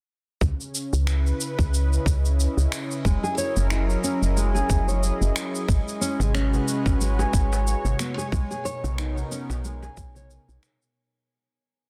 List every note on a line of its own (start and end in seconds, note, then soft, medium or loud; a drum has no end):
0.41 0.53 C#2 loud
0.41 3.05 C#3 medium
0.41 kick loud
0.41 shaker soft
0.47 6.76 C#4 medium
0.61 shaker soft
0.75 shaker medium
0.93 1.32 C#2 medium
0.93 3.05 B4 medium
0.93 shaker soft
0.98 8.33 E4 medium
1.07 finger snap medium
1.07 shaker soft
1.27 shaker soft
1.41 shaker medium
1.54 6.76 D#5 medium
1.59 1.98 C#2 medium
1.59 kick loud
1.59 shaker soft
1.74 shaker soft
1.93 shaker soft
2.06 2.47 C#2 medium
2.06 kick medium
2.06 shaker medium
2.25 shaker soft
2.40 shaker soft
2.57 2.67 C#2 medium
2.57 shaker soft
2.72 finger snap medium
2.72 shaker medium
2.91 shaker soft
3.04 3.17 F#1 loud
3.04 5.68 F#3 medium
3.04 3.22 G#3 medium
3.04 kick loud
3.04 shaker soft
3.20 6.76 G#4 medium
3.20 3.36 G#4 medium
3.20 shaker soft
3.25 5.69 A#4 medium
3.38 3.69 C#5 medium
3.38 shaker medium
3.57 3.96 F#1 loud
3.57 shaker soft
3.70 3.88 E4 medium
3.70 finger snap medium
3.70 shaker soft
3.90 shaker soft
4.04 4.21 C#4 medium
4.04 shaker medium
4.22 4.62 F#1 medium
4.22 shaker soft
4.36 4.53 G#3 medium
4.36 shaker soft
4.55 4.86 G#4 medium
4.55 shaker soft
4.70 5.11 F#1 medium
4.70 kick loud
4.70 shaker medium
4.88 5.02 C#5 medium
4.88 shaker soft
5.03 shaker soft
5.21 5.31 F#1 medium
5.21 shaker soft
5.36 finger snap medium
5.36 shaker medium
5.55 shaker soft
5.68 5.81 G#1 loud
5.68 8.32 G#3 medium
5.68 kick loud
5.68 shaker soft
5.88 shaker soft
6.01 6.19 C#4 loud
6.01 shaker medium
6.12 9.39 F#4 medium
6.20 6.60 G#1 loud
6.20 6.33 G#3 medium
6.20 darbuka dum medium
6.20 shaker soft
6.25 8.32 B4 medium
6.34 6.99 C#4 loud
6.34 finger snap medium
6.34 shaker soft
6.54 darbuka dum medium
6.54 shaker soft
6.68 10.96 C#5 medium
6.68 shaker medium
6.86 7.25 G#1 medium
6.86 kick loud
6.86 darbuka tek medium
6.86 shaker soft
7.00 7.17 G#3 medium
7.00 shaker soft
7.19 7.83 G#4 medium
7.19 darbuka tek medium
7.19 shaker soft
7.33 7.75 G#1 medium
7.33 kick loud
7.33 darbuka ka soft
7.33 shaker medium
7.53 darbuka tek medium
7.53 shaker soft
7.67 shaker soft
7.85 7.94 G#1 medium
7.85 darbuka dum medium
7.85 shaker soft
7.99 8.16 B3 medium
7.99 finger snap medium
7.99 shaker medium
8.18 8.26 G#4 medium
8.18 darbuka ka medium
8.18 shaker soft
8.32 8.45 B1 medium
8.32 10.96 B2 medium
8.32 8.49 G#3 medium
8.32 kick loud
8.32 shaker soft
8.51 10.96 B3 medium
8.51 8.64 G#4 loud
8.51 10.96 A#4 medium
8.51 shaker soft
8.60 10.96 D#4 medium
8.65 8.97 C#5 medium
8.65 shaker medium
8.84 9.23 B1 loud
8.84 darbuka dum medium
8.84 shaker soft
8.98 9.16 D#4 medium
8.98 finger snap medium
8.98 shaker soft
9.16 darbuka dum medium
9.16 shaker soft
9.31 9.49 C#4 medium
9.31 shaker medium
9.50 9.89 B1 medium
9.50 darbuka ka soft
9.50 darbuka tek medium
9.50 shaker soft
9.64 9.81 G#3 medium
9.64 shaker soft
9.82 10.14 G#4 medium
9.82 darbuka ka soft
9.82 darbuka tek medium
9.82 shaker soft
9.97 10.39 B1 medium
9.97 kick loud
9.97 shaker medium
10.15 10.30 C#5 medium
10.15 darbuka dum medium
10.15 shaker soft
10.31 shaker soft
10.49 10.58 B1 medium
10.49 shaker soft
10.63 finger snap medium
10.63 darbuka ka medium
10.63 shaker medium
10.82 shaker soft